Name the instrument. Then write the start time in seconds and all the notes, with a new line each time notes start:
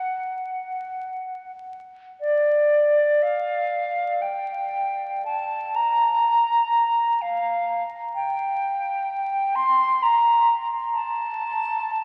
flute
Already playing: F#5
2.20 D5
3.22 F5
4.21 G5
5.25 A5
5.75 A#5
7.21 F5
8.14 G5
9.55 C6
10.02 A#5
10.93 A5